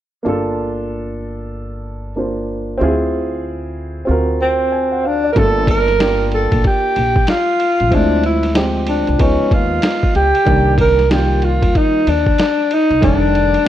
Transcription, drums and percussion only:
5.36 kick, ride
5.67 kick, ride
5.88 snare, ride
6.00 snare, hi-hat pedal, ride
6.32 ride
6.52 kick, ride
6.64 kick, ride
6.96 ride
7.16 kick
7.27 snare, hi-hat pedal, ride
7.60 ride
7.80 ride
7.92 kick, ride
8.23 ride
8.43 snare, ride
8.55 snare, hi-hat pedal, ride
8.87 ride
9.07 ride
9.19 kick, ride
9.51 kick, ride
9.82 snare, hi-hat pedal, ride
10.03 kick
10.15 ride
10.35 ride
10.47 kick, ride
10.78 kick, ride
10.99 snare, ride
11.11 snare, hi-hat pedal, ride
11.42 ride
11.62 kick, ride
11.75 kick, ride
12.07 ride
12.27 kick
12.38 snare, hi-hat pedal, ride
12.71 ride
12.91 ride
13.02 kick, ride
13.35 ride
13.54 ride

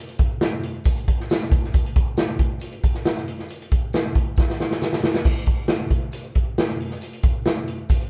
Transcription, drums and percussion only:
0.09 closed hi-hat
0.19 kick, closed hi-hat
0.41 snare, tambourine
0.63 closed hi-hat
0.84 kick, closed hi-hat, tambourine
0.97 closed hi-hat
1.08 kick, closed hi-hat
1.20 snare
1.29 snare, tambourine
1.42 snare
1.52 kick, closed hi-hat
1.64 snare
1.73 kick, closed hi-hat, tambourine
1.86 closed hi-hat
1.96 kick, closed hi-hat
2.17 snare, tambourine
2.39 kick, closed hi-hat
2.60 closed hi-hat, tambourine
2.72 closed hi-hat
2.83 kick, closed hi-hat
2.94 snare
3.05 snare, tambourine
3.17 snare
3.28 closed hi-hat
3.39 snare
3.49 closed hi-hat, tambourine
3.62 closed hi-hat
3.72 kick, closed hi-hat
3.93 snare, tambourine
4.15 kick, closed hi-hat
4.36 kick, snare, tambourine
4.50 snare
4.60 snare
4.71 snare
4.81 snare, tambourine
4.93 snare
5.04 snare
5.14 snare
5.24 kick, crash, tambourine
5.37 closed hi-hat
5.46 kick, closed hi-hat
5.68 snare, tambourine
5.90 kick, closed hi-hat
6.12 closed hi-hat, tambourine
6.35 kick, closed hi-hat
6.58 snare, tambourine
6.69 snare
6.80 open hi-hat
6.91 snare
7.01 closed hi-hat, tambourine
7.13 closed hi-hat
7.23 kick, closed hi-hat
7.45 snare, tambourine
7.68 closed hi-hat
7.89 kick, closed hi-hat, tambourine
8.01 closed hi-hat

